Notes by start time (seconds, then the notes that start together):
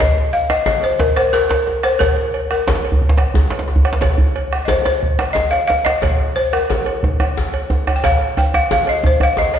0.00 D#5, bombo low, djembe slap, djembe bass
0.33 F5
0.50 D#5, bombo rim, djembe slap
0.66 D#5, cowbell, djembe slap, djembe tone, djembe bass
0.83 C5, cowbell
0.99 A#4, bombo low, djembe slap
1.16 C5, bombo rim, cowbell
1.33 A#4, djembe slap
1.50 A#4, cowbell, djembe slap
1.67 bombo rim, djembe tone
1.83 C5, bombo rim, cowbell
1.99 A#4, bombo low, cowbell, djembe slap, djembe bass
2.34 cowbell
2.51 A#4, bombo rim
2.67 cowbell, djembe slap, djembe tone, djembe bass
2.75 djembe slap
2.85 cowbell
2.92 djembe bass
3.02 bombo low
3.09 djembe slap
3.17 bombo rim, cowbell, djembe slap
3.34 djembe slap, djembe bass
3.50 cowbell, djembe slap
3.59 djembe slap
3.68 bombo rim, djembe tone
3.76 djembe bass
3.85 bombo rim, cowbell
3.93 djembe slap
4.01 bombo low, cowbell, djembe slap, djembe bass
4.18 djembe bass
4.36 cowbell
4.53 bombo rim
4.65 C5 D#5, cowbell, djembe slap, djembe tone, djembe bass
4.85 C5, cowbell, djembe slap
5.03 bombo low
5.19 bombo rim, cowbell, djembe slap
5.33 D#5, djembe slap, djembe bass
5.51 F5, cowbell
5.68 F5, bombo rim, djembe slap, djembe tone
5.85 D#5, bombo rim, cowbell, djembe slap
6.02 bombo low, cowbell, djembe slap, djembe bass
6.19 bombo rim, djembe slap
6.36 C5, cowbell
6.53 A#4, bombo rim
6.70 cowbell, djembe slap, djembe tone, djembe bass
6.86 bombo rim, cowbell
7.03 bombo low, djembe tone
7.20 bombo rim, cowbell, djembe tone
7.37 djembe slap, djembe bass
7.54 cowbell
7.70 bombo rim, djembe tone
7.87 bombo rim, cowbell, djembe tone
7.96 G5
8.04 F5, bombo low, cowbell, djembe slap, djembe bass
8.37 G5, cowbell, djembe tone
8.54 F5, bombo rim, djembe tone
8.71 F5, cowbell, djembe slap, djembe tone, djembe bass
8.87 D#5, cowbell
9.04 C5, bombo low, djembe tone
9.20 F5, bombo rim, cowbell, djembe tone
9.37 D#5, djembe slap, djembe bass
9.54 D#5, cowbell